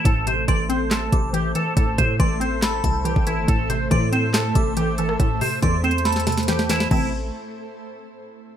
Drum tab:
CC |------------------------------------------------------------------------------------------------|------------------------------------------------------------------------------------------------|------------------------------------------------------------------------------------------------|------------------------------------------------------------------------------------------------|
HH |x-----------x-----------x-----------x-----------x-----------x-----------x-----------x-----------|x-----------x-----------x-----------x-----------x-----------x-----------x-----------x-----------|x-----------x-----------x-----------x-----------x-----------x-----------x-----------x-----------|x-----------o-----------x-----------x---x---x---x---x---x---x--x--x--x--x-----------x-----------|
CP |------------------------------------------------x-----------------------------------------------|------------------------------------------------x-----------------------------------------------|------------------------------------------------x-----------------------------------------------|------------------------------------------------------------------------------------------------|
SD |------------------------------------------------o-----------------------------------------------|------------------------------------------------o-----------------------------------------------|------------------------------------------------o-----------------------------------------r-----|------------------------------------------------o-----o-----o-----o-----o-----o-----o-----o-----|
BD |o-----------------------o-----------------------------------o-----------------------------------|o-----------o-----------o-----------------------------------o-----------------o-----------------|o-----------------------o-----------------------------------o-----------------------------------|o-----------------------o-----------------------------------------------------------------------|

CC |x-----------------------------------------------------------------------------------------------|
HH |------------------------------------------------------------------------------------------------|
CP |------------------------------------------------------------------------------------------------|
SD |------------------------------------------------------------------------------------------------|
BD |o-----------------------------------------------------------------------------------------------|